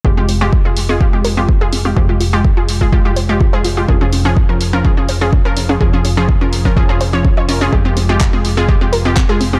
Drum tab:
HH |--o---o---o---o-|--o---o---o---o-|--o---o---o---o-|--o---o---o---o-|
CP |----------------|----------------|----------------|----------------|
BD |o---o---o---o---|o---o--oo---o---|o---o---o---o---|o---o--oo---o---|

HH |--o---o---o---o-|
CP |----x-------x---|
BD |o---o---o---o---|